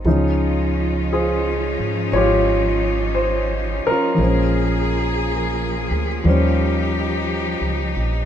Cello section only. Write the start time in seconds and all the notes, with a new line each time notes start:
0.04 F3 C#4 D#4 F4
4.18 F3 A#3 G#4
6.26 D#4 G4